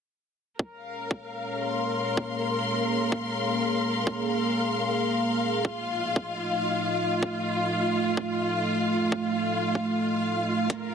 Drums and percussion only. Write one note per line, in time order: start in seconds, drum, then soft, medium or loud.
0.59 kick loud
1.11 kick loud
2.17 kick loud
3.12 kick loud
4.07 kick loud
5.65 kick loud
6.16 kick loud
7.23 kick loud
8.17 kick loud
9.12 kick loud
9.75 kick medium
10.70 kick loud
10.70 closed hi-hat medium